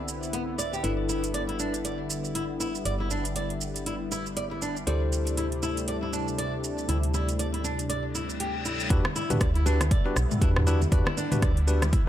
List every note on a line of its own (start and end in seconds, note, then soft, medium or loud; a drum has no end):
0.00 0.82 C2 medium
0.00 4.83 D3 medium
0.00 4.83 B3 medium
0.00 0.80 C4 medium
0.00 0.81 D4 medium
0.00 0.81 E4 medium
0.00 4.83 E4 medium
0.00 0.81 G4 medium
0.00 0.81 B4 medium
0.08 shaker medium
0.23 shaker soft
0.33 0.41 B3 medium
0.33 closed hi-hat medium
0.33 shaker soft
0.58 0.72 D5 medium
0.58 shaker medium
0.73 0.83 G4 medium
0.73 shaker soft
0.84 2.83 G1 medium
0.84 8.86 G3 medium
0.84 4.84 D4 medium
0.84 4.84 E4 medium
0.84 0.92 E4 medium
0.84 4.84 A4 medium
0.84 4.84 B4 medium
0.84 closed hi-hat medium
0.84 shaker soft
1.09 1.22 E4 medium
1.09 shaker medium
1.24 closed hi-hat soft
1.24 shaker soft
1.34 1.42 D5 medium
1.34 closed hi-hat medium
1.34 shaker soft
1.49 1.58 E4 medium
1.49 closed hi-hat soft
1.59 1.73 D4 medium
1.59 shaker medium
1.74 closed hi-hat soft
1.74 shaker soft
1.85 1.98 D5 medium
1.85 closed hi-hat medium
1.85 shaker soft
2.10 shaker medium
2.25 shaker soft
2.35 2.43 E4 medium
2.35 closed hi-hat medium
2.35 shaker soft
2.60 2.73 E4 medium
2.60 shaker medium
2.75 shaker soft
2.85 4.85 G1 medium
2.85 2.93 D5 medium
2.85 closed hi-hat medium
2.85 shaker soft
3.00 3.10 E4 medium
3.11 3.24 D4 medium
3.11 shaker medium
3.25 closed hi-hat soft
3.25 shaker soft
3.36 3.50 D5 medium
3.36 closed hi-hat medium
3.36 shaker soft
3.50 closed hi-hat soft
3.61 shaker medium
3.76 closed hi-hat soft
3.76 shaker soft
3.86 3.94 E4 medium
3.86 closed hi-hat medium
3.86 shaker soft
4.11 4.25 E4 medium
4.11 shaker medium
4.26 shaker soft
4.37 4.44 D5 medium
4.37 closed hi-hat medium
4.37 shaker soft
4.51 4.61 E4 medium
4.62 4.75 D4 medium
4.62 shaker medium
4.77 shaker soft
4.87 6.87 D2 medium
4.87 8.87 C3 medium
4.87 8.87 A3 medium
4.87 8.87 D4 medium
4.87 8.88 E4 medium
4.87 8.88 G4 medium
4.87 8.88 A4 medium
4.87 8.88 C5 medium
4.87 5.01 D5 medium
4.87 closed hi-hat medium
4.87 shaker soft
5.12 shaker medium
5.27 closed hi-hat soft
5.27 shaker soft
5.37 5.45 E4 medium
5.37 closed hi-hat medium
5.37 shaker soft
5.52 closed hi-hat soft
5.63 5.76 E4 medium
5.63 shaker medium
5.77 closed hi-hat soft
5.77 shaker soft
5.88 5.96 D5 medium
5.88 closed hi-hat medium
5.88 shaker soft
6.03 6.12 E4 medium
6.13 6.26 D4 medium
6.13 shaker medium
6.28 shaker soft
6.38 6.52 D5 medium
6.38 closed hi-hat medium
6.38 shaker soft
6.64 shaker medium
6.78 shaker soft
6.89 8.88 D2 medium
6.89 6.97 E4 medium
6.89 closed hi-hat medium
6.89 shaker soft
7.03 closed hi-hat soft
7.14 7.27 E4 medium
7.14 shaker medium
7.29 closed hi-hat soft
7.29 shaker soft
7.39 7.47 D5 medium
7.39 closed hi-hat medium
7.39 shaker soft
7.54 7.63 E4 medium
7.54 closed hi-hat soft
7.64 7.77 D4 medium
7.64 shaker medium
7.79 closed hi-hat soft
7.79 shaker soft
7.89 8.03 D5 medium
7.89 closed hi-hat medium
7.89 reverse cymbal medium
7.89 shaker soft
8.15 8.28 E4 medium
8.15 shaker medium
8.30 shaker soft
8.40 8.54 G4 medium
8.40 closed hi-hat medium
8.40 shaker soft
8.65 8.79 E4 medium
8.65 shaker medium
8.80 shaker soft
8.90 9.00 E2 loud
8.90 12.09 D3 medium
8.90 12.09 G3 medium
8.90 12.09 B3 medium
8.90 9.04 D4 medium
8.90 12.09 E4 medium
8.90 8.98 E4 medium
8.90 9.04 F#4 medium
8.90 9.04 G4 medium
8.90 9.04 B4 loud
8.90 kick loud
8.90 closed hi-hat medium
8.90 shaker soft
9.05 cross-stick loud
9.05 muted conga medium
9.05 low conga loud
9.16 9.29 E4 loud
9.16 shaker medium
9.30 9.47 D4 medium
9.30 9.47 F#4 medium
9.30 9.47 G4 medium
9.30 9.47 B4 medium
9.30 closed hi-hat soft
9.30 mid tom medium
9.30 high conga medium
9.30 low conga loud
9.30 shaker medium
9.41 9.97 D2 loud
9.41 9.49 D5 medium
9.41 kick loud
9.41 cross-stick medium
9.41 closed hi-hat medium
9.41 shaker soft
9.55 9.65 E4 medium
9.55 closed hi-hat soft
9.66 9.79 D4 medium
9.66 9.79 D4 loud
9.66 9.79 F#4 medium
9.66 9.79 G4 medium
9.66 9.79 B4 medium
9.66 muted conga medium
9.66 shaker medium
9.81 cross-stick medium
9.81 closed hi-hat soft
9.81 low conga loud
9.81 shaker soft
9.91 10.05 D5 medium
9.91 kick loud
9.91 closed hi-hat medium
9.91 shaker soft
10.06 10.15 D4 medium
10.06 10.15 F#4 medium
10.06 10.15 G4 medium
10.06 10.15 B4 loud
10.16 10.26 B1 medium
10.16 cross-stick medium
10.16 muted conga medium
10.16 shaker medium
10.31 mid tom medium
10.31 high conga loud
10.31 shaker medium
10.41 10.86 E2 medium
10.41 10.64 D4 medium
10.41 10.50 E4 medium
10.41 10.64 F#4 medium
10.41 10.64 G4 medium
10.41 10.64 B4 medium
10.41 kick loud
10.41 closed hi-hat medium
10.41 shaker soft
10.56 cross-stick loud
10.56 mid tom medium
10.56 muted conga soft
10.67 10.80 D4 medium
10.67 10.80 E4 loud
10.67 10.80 F#4 medium
10.67 10.80 G4 medium
10.67 10.80 B4 medium
10.67 shaker medium
10.81 muted conga medium
10.81 low conga medium
10.81 shaker soft
10.92 11.01 E2 loud
10.92 11.05 D4 loud
10.92 11.05 F#4 medium
10.92 11.05 G4 medium
10.92 11.05 B4 loud
10.92 11.00 D5 medium
10.92 kick loud
10.92 closed hi-hat medium
10.92 shaker soft
11.06 11.16 E4 medium
11.06 cross-stick loud
11.06 muted conga medium
11.06 low conga loud
11.17 11.30 D4 loud
11.17 shaker medium
11.32 11.49 D4 medium
11.32 11.49 F#4 medium
11.32 11.49 G4 medium
11.32 11.49 B4 loud
11.32 closed hi-hat soft
11.32 mid tom medium
11.32 high conga medium
11.32 low conga loud
11.32 shaker medium
11.42 11.99 D2 loud
11.42 11.56 D5 medium
11.42 kick loud
11.42 cross-stick medium
11.42 closed hi-hat medium
11.42 shaker soft
11.57 closed hi-hat soft
11.68 11.81 D4 medium
11.68 11.81 F#4 medium
11.68 11.81 G4 medium
11.68 11.81 B4 medium
11.68 muted conga medium
11.68 shaker medium
11.82 cross-stick medium
11.82 closed hi-hat soft
11.82 high conga medium
11.82 low conga loud
11.82 shaker medium
11.93 12.01 E4 medium
11.93 kick loud
11.93 closed hi-hat medium
11.93 muted conga soft
11.93 low conga medium
11.93 shaker soft